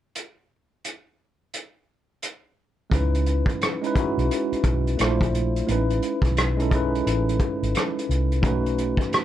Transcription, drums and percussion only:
0, 0, Header, 1, 2, 480
1, 0, Start_track
1, 0, Key_signature, 4, "minor"
1, 0, Tempo, 689655
1, 106, Time_signature, 4, 2, 24, 8
1, 6435, End_track
2, 0, Start_track
2, 0, Title_t, "Drums"
2, 106, Note_on_c, 9, 42, 47
2, 176, Note_off_c, 9, 42, 0
2, 588, Note_on_c, 9, 42, 48
2, 658, Note_off_c, 9, 42, 0
2, 1069, Note_on_c, 9, 42, 48
2, 1138, Note_off_c, 9, 42, 0
2, 1549, Note_on_c, 9, 42, 50
2, 1618, Note_off_c, 9, 42, 0
2, 2029, Note_on_c, 9, 36, 85
2, 2036, Note_on_c, 9, 42, 68
2, 2099, Note_off_c, 9, 36, 0
2, 2106, Note_off_c, 9, 42, 0
2, 2189, Note_on_c, 9, 42, 38
2, 2259, Note_off_c, 9, 42, 0
2, 2271, Note_on_c, 9, 42, 48
2, 2340, Note_off_c, 9, 42, 0
2, 2408, Note_on_c, 9, 36, 74
2, 2431, Note_on_c, 9, 42, 38
2, 2478, Note_off_c, 9, 36, 0
2, 2501, Note_off_c, 9, 42, 0
2, 2516, Note_on_c, 9, 42, 64
2, 2527, Note_on_c, 9, 37, 91
2, 2586, Note_off_c, 9, 42, 0
2, 2597, Note_off_c, 9, 37, 0
2, 2671, Note_on_c, 9, 42, 40
2, 2741, Note_off_c, 9, 42, 0
2, 2754, Note_on_c, 9, 36, 81
2, 2757, Note_on_c, 9, 42, 59
2, 2823, Note_off_c, 9, 36, 0
2, 2827, Note_off_c, 9, 42, 0
2, 2915, Note_on_c, 9, 42, 37
2, 2984, Note_off_c, 9, 42, 0
2, 3000, Note_on_c, 9, 42, 67
2, 3070, Note_off_c, 9, 42, 0
2, 3150, Note_on_c, 9, 42, 39
2, 3220, Note_off_c, 9, 42, 0
2, 3227, Note_on_c, 9, 42, 60
2, 3228, Note_on_c, 9, 36, 83
2, 3297, Note_off_c, 9, 42, 0
2, 3298, Note_off_c, 9, 36, 0
2, 3390, Note_on_c, 9, 42, 40
2, 3460, Note_off_c, 9, 42, 0
2, 3471, Note_on_c, 9, 42, 73
2, 3488, Note_on_c, 9, 37, 89
2, 3541, Note_off_c, 9, 42, 0
2, 3558, Note_off_c, 9, 37, 0
2, 3624, Note_on_c, 9, 36, 74
2, 3638, Note_on_c, 9, 42, 44
2, 3694, Note_off_c, 9, 36, 0
2, 3707, Note_off_c, 9, 42, 0
2, 3720, Note_on_c, 9, 42, 53
2, 3790, Note_off_c, 9, 42, 0
2, 3870, Note_on_c, 9, 42, 39
2, 3939, Note_off_c, 9, 42, 0
2, 3955, Note_on_c, 9, 42, 65
2, 4024, Note_off_c, 9, 42, 0
2, 4107, Note_on_c, 9, 42, 37
2, 4177, Note_off_c, 9, 42, 0
2, 4192, Note_on_c, 9, 42, 52
2, 4262, Note_off_c, 9, 42, 0
2, 4327, Note_on_c, 9, 36, 72
2, 4346, Note_on_c, 9, 42, 38
2, 4355, Note_on_c, 9, 37, 29
2, 4397, Note_off_c, 9, 36, 0
2, 4415, Note_off_c, 9, 42, 0
2, 4424, Note_off_c, 9, 37, 0
2, 4432, Note_on_c, 9, 42, 64
2, 4443, Note_on_c, 9, 37, 91
2, 4502, Note_off_c, 9, 42, 0
2, 4513, Note_off_c, 9, 37, 0
2, 4590, Note_on_c, 9, 42, 42
2, 4660, Note_off_c, 9, 42, 0
2, 4673, Note_on_c, 9, 36, 79
2, 4678, Note_on_c, 9, 42, 55
2, 4742, Note_off_c, 9, 36, 0
2, 4747, Note_off_c, 9, 42, 0
2, 4837, Note_on_c, 9, 42, 37
2, 4907, Note_off_c, 9, 42, 0
2, 4920, Note_on_c, 9, 42, 67
2, 4989, Note_off_c, 9, 42, 0
2, 5072, Note_on_c, 9, 42, 40
2, 5142, Note_off_c, 9, 42, 0
2, 5146, Note_on_c, 9, 42, 54
2, 5148, Note_on_c, 9, 36, 81
2, 5215, Note_off_c, 9, 42, 0
2, 5217, Note_off_c, 9, 36, 0
2, 5312, Note_on_c, 9, 42, 40
2, 5381, Note_off_c, 9, 42, 0
2, 5392, Note_on_c, 9, 42, 68
2, 5408, Note_on_c, 9, 37, 86
2, 5461, Note_off_c, 9, 42, 0
2, 5478, Note_off_c, 9, 37, 0
2, 5558, Note_on_c, 9, 42, 43
2, 5628, Note_off_c, 9, 42, 0
2, 5643, Note_on_c, 9, 42, 51
2, 5712, Note_off_c, 9, 42, 0
2, 5789, Note_on_c, 9, 42, 38
2, 5858, Note_off_c, 9, 42, 0
2, 5867, Note_on_c, 9, 36, 97
2, 5875, Note_on_c, 9, 42, 60
2, 5937, Note_off_c, 9, 36, 0
2, 5945, Note_off_c, 9, 42, 0
2, 6028, Note_on_c, 9, 42, 38
2, 6098, Note_off_c, 9, 42, 0
2, 6113, Note_on_c, 9, 42, 51
2, 6182, Note_off_c, 9, 42, 0
2, 6246, Note_on_c, 9, 36, 70
2, 6269, Note_on_c, 9, 42, 39
2, 6278, Note_on_c, 9, 37, 29
2, 6315, Note_off_c, 9, 36, 0
2, 6338, Note_off_c, 9, 42, 0
2, 6348, Note_off_c, 9, 37, 0
2, 6352, Note_on_c, 9, 42, 66
2, 6364, Note_on_c, 9, 37, 92
2, 6422, Note_off_c, 9, 42, 0
2, 6433, Note_off_c, 9, 37, 0
2, 6435, End_track
0, 0, End_of_file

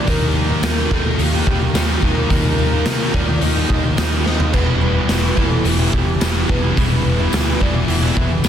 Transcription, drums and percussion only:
0, 0, Header, 1, 2, 480
1, 0, Start_track
1, 0, Tempo, 557621
1, 66, Time_signature, 4, 2, 24, 8
1, 7304, End_track
2, 0, Start_track
2, 0, Title_t, "Drums"
2, 63, Note_on_c, 9, 46, 55
2, 65, Note_on_c, 9, 36, 98
2, 149, Note_off_c, 9, 46, 0
2, 151, Note_off_c, 9, 36, 0
2, 542, Note_on_c, 9, 54, 109
2, 547, Note_on_c, 9, 38, 121
2, 547, Note_on_c, 9, 46, 61
2, 628, Note_off_c, 9, 54, 0
2, 633, Note_off_c, 9, 46, 0
2, 634, Note_off_c, 9, 38, 0
2, 785, Note_on_c, 9, 36, 89
2, 871, Note_off_c, 9, 36, 0
2, 1026, Note_on_c, 9, 46, 59
2, 1112, Note_off_c, 9, 46, 0
2, 1265, Note_on_c, 9, 36, 89
2, 1352, Note_off_c, 9, 36, 0
2, 1506, Note_on_c, 9, 46, 54
2, 1506, Note_on_c, 9, 54, 102
2, 1507, Note_on_c, 9, 38, 106
2, 1592, Note_off_c, 9, 46, 0
2, 1592, Note_off_c, 9, 54, 0
2, 1593, Note_off_c, 9, 38, 0
2, 1743, Note_on_c, 9, 36, 84
2, 1829, Note_off_c, 9, 36, 0
2, 1983, Note_on_c, 9, 36, 108
2, 1985, Note_on_c, 9, 46, 52
2, 2069, Note_off_c, 9, 36, 0
2, 2071, Note_off_c, 9, 46, 0
2, 2459, Note_on_c, 9, 54, 85
2, 2460, Note_on_c, 9, 38, 112
2, 2460, Note_on_c, 9, 46, 63
2, 2545, Note_off_c, 9, 54, 0
2, 2546, Note_off_c, 9, 46, 0
2, 2547, Note_off_c, 9, 38, 0
2, 2704, Note_on_c, 9, 36, 83
2, 2790, Note_off_c, 9, 36, 0
2, 2938, Note_on_c, 9, 46, 66
2, 3024, Note_off_c, 9, 46, 0
2, 3184, Note_on_c, 9, 36, 92
2, 3271, Note_off_c, 9, 36, 0
2, 3426, Note_on_c, 9, 46, 59
2, 3426, Note_on_c, 9, 54, 88
2, 3427, Note_on_c, 9, 38, 118
2, 3512, Note_off_c, 9, 46, 0
2, 3512, Note_off_c, 9, 54, 0
2, 3513, Note_off_c, 9, 38, 0
2, 3667, Note_on_c, 9, 38, 68
2, 3753, Note_off_c, 9, 38, 0
2, 3788, Note_on_c, 9, 43, 90
2, 3874, Note_off_c, 9, 43, 0
2, 3903, Note_on_c, 9, 49, 87
2, 3906, Note_on_c, 9, 36, 101
2, 3989, Note_off_c, 9, 49, 0
2, 3992, Note_off_c, 9, 36, 0
2, 4381, Note_on_c, 9, 46, 62
2, 4382, Note_on_c, 9, 38, 110
2, 4385, Note_on_c, 9, 54, 97
2, 4467, Note_off_c, 9, 46, 0
2, 4468, Note_off_c, 9, 38, 0
2, 4471, Note_off_c, 9, 54, 0
2, 4625, Note_on_c, 9, 36, 77
2, 4711, Note_off_c, 9, 36, 0
2, 4863, Note_on_c, 9, 46, 65
2, 4949, Note_off_c, 9, 46, 0
2, 5107, Note_on_c, 9, 36, 88
2, 5194, Note_off_c, 9, 36, 0
2, 5346, Note_on_c, 9, 54, 98
2, 5349, Note_on_c, 9, 46, 58
2, 5350, Note_on_c, 9, 38, 115
2, 5433, Note_off_c, 9, 54, 0
2, 5436, Note_off_c, 9, 38, 0
2, 5436, Note_off_c, 9, 46, 0
2, 5590, Note_on_c, 9, 36, 97
2, 5676, Note_off_c, 9, 36, 0
2, 5831, Note_on_c, 9, 36, 105
2, 5833, Note_on_c, 9, 46, 57
2, 5917, Note_off_c, 9, 36, 0
2, 5919, Note_off_c, 9, 46, 0
2, 6307, Note_on_c, 9, 54, 100
2, 6318, Note_on_c, 9, 46, 59
2, 6319, Note_on_c, 9, 38, 106
2, 6393, Note_off_c, 9, 54, 0
2, 6404, Note_off_c, 9, 46, 0
2, 6405, Note_off_c, 9, 38, 0
2, 6553, Note_on_c, 9, 36, 82
2, 6639, Note_off_c, 9, 36, 0
2, 6797, Note_on_c, 9, 46, 60
2, 6884, Note_off_c, 9, 46, 0
2, 7031, Note_on_c, 9, 36, 93
2, 7117, Note_off_c, 9, 36, 0
2, 7264, Note_on_c, 9, 54, 110
2, 7270, Note_on_c, 9, 46, 57
2, 7271, Note_on_c, 9, 38, 112
2, 7304, Note_off_c, 9, 38, 0
2, 7304, Note_off_c, 9, 46, 0
2, 7304, Note_off_c, 9, 54, 0
2, 7304, End_track
0, 0, End_of_file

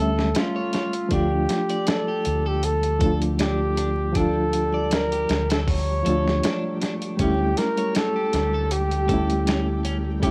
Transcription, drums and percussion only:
0, 0, Header, 1, 2, 480
1, 0, Start_track
1, 0, Key_signature, -1, "minor"
1, 0, Tempo, 759494
1, 706, Time_signature, 4, 2, 24, 8
1, 6515, End_track
2, 0, Start_track
2, 0, Title_t, "Drums"
2, 118, Note_on_c, 9, 38, 51
2, 181, Note_off_c, 9, 38, 0
2, 219, Note_on_c, 9, 42, 88
2, 229, Note_on_c, 9, 38, 113
2, 282, Note_off_c, 9, 42, 0
2, 292, Note_off_c, 9, 38, 0
2, 461, Note_on_c, 9, 42, 68
2, 470, Note_on_c, 9, 38, 53
2, 524, Note_off_c, 9, 42, 0
2, 533, Note_off_c, 9, 38, 0
2, 589, Note_on_c, 9, 42, 44
2, 653, Note_off_c, 9, 42, 0
2, 699, Note_on_c, 9, 42, 83
2, 701, Note_on_c, 9, 36, 103
2, 763, Note_off_c, 9, 42, 0
2, 765, Note_off_c, 9, 36, 0
2, 942, Note_on_c, 9, 42, 69
2, 952, Note_on_c, 9, 38, 49
2, 1005, Note_off_c, 9, 42, 0
2, 1015, Note_off_c, 9, 38, 0
2, 1071, Note_on_c, 9, 42, 44
2, 1135, Note_off_c, 9, 42, 0
2, 1180, Note_on_c, 9, 42, 83
2, 1190, Note_on_c, 9, 38, 114
2, 1243, Note_off_c, 9, 42, 0
2, 1253, Note_off_c, 9, 38, 0
2, 1421, Note_on_c, 9, 42, 69
2, 1484, Note_off_c, 9, 42, 0
2, 1662, Note_on_c, 9, 42, 83
2, 1725, Note_off_c, 9, 42, 0
2, 1790, Note_on_c, 9, 42, 39
2, 1853, Note_off_c, 9, 42, 0
2, 1900, Note_on_c, 9, 42, 66
2, 1903, Note_on_c, 9, 36, 96
2, 1963, Note_off_c, 9, 42, 0
2, 1966, Note_off_c, 9, 36, 0
2, 2033, Note_on_c, 9, 42, 42
2, 2096, Note_off_c, 9, 42, 0
2, 2143, Note_on_c, 9, 42, 90
2, 2152, Note_on_c, 9, 38, 119
2, 2206, Note_off_c, 9, 42, 0
2, 2215, Note_off_c, 9, 38, 0
2, 2385, Note_on_c, 9, 42, 68
2, 2448, Note_off_c, 9, 42, 0
2, 2623, Note_on_c, 9, 42, 86
2, 2624, Note_on_c, 9, 36, 108
2, 2686, Note_off_c, 9, 42, 0
2, 2687, Note_off_c, 9, 36, 0
2, 2863, Note_on_c, 9, 42, 70
2, 2927, Note_off_c, 9, 42, 0
2, 3104, Note_on_c, 9, 42, 94
2, 3114, Note_on_c, 9, 38, 117
2, 3167, Note_off_c, 9, 42, 0
2, 3177, Note_off_c, 9, 38, 0
2, 3236, Note_on_c, 9, 42, 44
2, 3299, Note_off_c, 9, 42, 0
2, 3344, Note_on_c, 9, 42, 73
2, 3354, Note_on_c, 9, 38, 107
2, 3407, Note_off_c, 9, 42, 0
2, 3417, Note_off_c, 9, 38, 0
2, 3476, Note_on_c, 9, 42, 77
2, 3486, Note_on_c, 9, 38, 111
2, 3540, Note_off_c, 9, 42, 0
2, 3549, Note_off_c, 9, 38, 0
2, 3587, Note_on_c, 9, 36, 107
2, 3588, Note_on_c, 9, 46, 83
2, 3650, Note_off_c, 9, 36, 0
2, 3651, Note_off_c, 9, 46, 0
2, 3829, Note_on_c, 9, 42, 69
2, 3892, Note_off_c, 9, 42, 0
2, 3966, Note_on_c, 9, 38, 52
2, 4030, Note_off_c, 9, 38, 0
2, 4067, Note_on_c, 9, 42, 94
2, 4076, Note_on_c, 9, 38, 116
2, 4130, Note_off_c, 9, 42, 0
2, 4140, Note_off_c, 9, 38, 0
2, 4308, Note_on_c, 9, 42, 66
2, 4317, Note_on_c, 9, 38, 54
2, 4371, Note_off_c, 9, 42, 0
2, 4380, Note_off_c, 9, 38, 0
2, 4436, Note_on_c, 9, 42, 47
2, 4499, Note_off_c, 9, 42, 0
2, 4545, Note_on_c, 9, 42, 91
2, 4546, Note_on_c, 9, 36, 111
2, 4608, Note_off_c, 9, 42, 0
2, 4609, Note_off_c, 9, 36, 0
2, 4785, Note_on_c, 9, 42, 70
2, 4795, Note_on_c, 9, 38, 44
2, 4849, Note_off_c, 9, 42, 0
2, 4858, Note_off_c, 9, 38, 0
2, 4913, Note_on_c, 9, 42, 45
2, 4977, Note_off_c, 9, 42, 0
2, 5023, Note_on_c, 9, 42, 85
2, 5033, Note_on_c, 9, 38, 120
2, 5086, Note_off_c, 9, 42, 0
2, 5096, Note_off_c, 9, 38, 0
2, 5265, Note_on_c, 9, 42, 68
2, 5275, Note_on_c, 9, 38, 44
2, 5328, Note_off_c, 9, 42, 0
2, 5338, Note_off_c, 9, 38, 0
2, 5505, Note_on_c, 9, 42, 85
2, 5568, Note_off_c, 9, 42, 0
2, 5634, Note_on_c, 9, 42, 39
2, 5697, Note_off_c, 9, 42, 0
2, 5745, Note_on_c, 9, 36, 96
2, 5746, Note_on_c, 9, 42, 72
2, 5808, Note_off_c, 9, 36, 0
2, 5809, Note_off_c, 9, 42, 0
2, 5876, Note_on_c, 9, 42, 42
2, 5939, Note_off_c, 9, 42, 0
2, 5986, Note_on_c, 9, 42, 90
2, 5995, Note_on_c, 9, 38, 123
2, 6049, Note_off_c, 9, 42, 0
2, 6058, Note_off_c, 9, 38, 0
2, 6224, Note_on_c, 9, 42, 69
2, 6287, Note_off_c, 9, 42, 0
2, 6463, Note_on_c, 9, 36, 105
2, 6465, Note_on_c, 9, 42, 94
2, 6515, Note_off_c, 9, 36, 0
2, 6515, Note_off_c, 9, 42, 0
2, 6515, End_track
0, 0, End_of_file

